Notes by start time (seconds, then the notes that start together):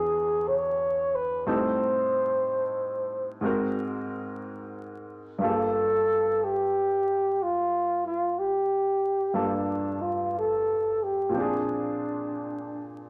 Already playing: E2 E3 D4 F#4 G#4
0.48 C#5
1.15 B4
1.46 A2 G3 C4 D#4 A4 C5
3.41 G#2 G#3 C4 F#4
3.46 A#4
5.38 G2 G3 A#3 F4
5.44 A4
6.44 G4
7.43 F4
8.06 F4
8.39 G4
9.34 G2 G3 A#3 D4 F4 A4
10.02 F4
10.38 A4
11.03 G4
11.29 A#2 F3
11.34 C4 D4
11.40 G#4